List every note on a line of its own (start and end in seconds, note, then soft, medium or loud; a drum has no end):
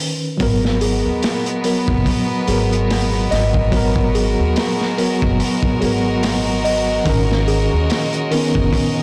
0.00 0.41 D#3 medium
0.00 0.41 C#4 medium
0.00 0.41 B4 medium
0.38 1.01 G#1 loud
0.38 1.59 F#3 medium
0.38 9.03 G#3 medium
0.38 7.02 B3 medium
0.38 1.61 B3 medium
0.38 9.03 F#4 medium
0.38 9.03 A#4 medium
0.38 kick loud
0.38 open hi-hat medium
0.42 1.62 A#4 medium
0.65 snare soft
0.81 1.21 G#4 medium
0.81 open hi-hat medium
1.06 1.21 D#2 medium
1.23 snare loud
1.23 open hi-hat medium
1.46 closed hi-hat soft
1.64 2.43 F#3 medium
1.64 2.44 B3 medium
1.64 1.91 A#4 medium
1.64 open hi-hat medium
1.88 2.04 F#1 loud
1.88 kick medium
2.06 kick medium
2.06 open hi-hat medium
2.47 3.28 G#1 medium
2.47 3.68 F#3 medium
2.47 3.69 B3 medium
2.47 3.28 G#4 medium
2.47 open hi-hat medium
2.52 3.71 A#4 medium
2.73 closed hi-hat soft
2.90 snare loud
2.90 open hi-hat medium
3.31 4.34 G#1 medium
3.31 3.57 D#5 medium
3.31 snare soft
3.31 open hi-hat medium
3.54 kick medium
3.72 4.93 F#3 medium
3.72 4.94 B3 medium
3.72 kick loud
3.72 open hi-hat medium
3.77 4.95 A#4 medium
3.96 kick medium
4.15 4.55 G#4 medium
4.15 open hi-hat medium
4.39 4.54 D#2 medium
4.56 snare loud
4.56 open hi-hat medium
4.81 snare soft
4.98 5.77 F#3 medium
4.98 5.78 B3 medium
4.98 5.24 A#4 medium
4.98 open hi-hat medium
5.22 5.38 F#1 loud
5.22 kick loud
5.40 open hi-hat medium
5.63 kick medium
5.80 7.03 G#1 medium
5.80 7.01 F#3 medium
5.80 7.03 B3 medium
5.80 6.61 G#4 medium
5.80 open hi-hat medium
5.85 7.04 A#4 medium
6.23 snare loud
6.23 open hi-hat medium
6.64 6.91 D#5 medium
6.64 open hi-hat medium
7.04 7.67 G#1 medium
7.04 8.26 D#3 medium
7.04 8.27 C#4 medium
7.04 9.03 C#5 medium
7.04 9.03 D#5 medium
7.04 kick loud
7.04 open hi-hat medium
7.09 8.29 A#4 medium
7.32 snare soft
7.48 7.88 G#4 medium
7.48 open hi-hat medium
7.73 7.88 D#2 medium
7.90 snare loud
7.90 open hi-hat medium
8.13 closed hi-hat soft
8.31 9.03 D#3 medium
8.31 9.03 B3 medium
8.31 9.03 C#4 medium
8.31 8.57 A#4 medium
8.31 open hi-hat medium
8.55 8.71 F#1 loud
8.55 kick medium
8.73 kick medium
8.73 open hi-hat medium